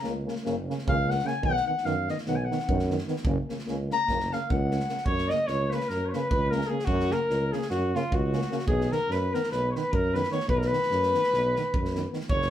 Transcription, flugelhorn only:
5.06 5.31 C#5 loud
5.30 5.48 D#5 loud
5.47 5.74 C#5 loud
5.73 5.91 B4 medium
5.90 6.11 A#4 medium
6.09 6.16 C#5 medium
6.14 6.30 B4 medium
6.30 6.53 B4 loud
6.51 6.70 A#4 loud
6.69 6.86 G#4 loud
6.85 7.14 F#4 loud
7.12 7.55 A#4 loud
7.53 7.70 G#4 medium
7.70 7.97 F#4 loud
7.96 8.15 F4 medium
8.14 8.67 F#4 loud
8.68 8.93 G#4 loud
8.92 9.13 A#4 loud
9.12 9.34 B4 loud
9.33 9.51 A#4 loud
9.51 9.67 B4 loud
9.71 9.78 C#5 medium
9.76 9.94 B4 medium
9.92 10.15 A#4 loud
10.14 10.31 B4 loud
10.32 10.47 C#5 loud
10.49 10.59 B4 loud
10.57 10.67 A#4 medium
10.66 12.12 B4 loud
12.30 12.50 C#5 loud

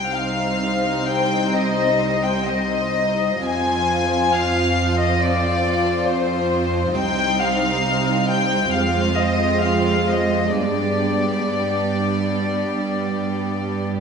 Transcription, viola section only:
0.00 3.41 G3 soft
0.00 3.41 C4 soft
3.46 6.94 F3 soft
3.46 8.71 C4 soft
6.99 8.72 G3 soft
8.75 11.54 G#3 soft
8.75 10.56 C4 soft
10.59 14.00 B3 soft
11.54 14.00 G3 soft

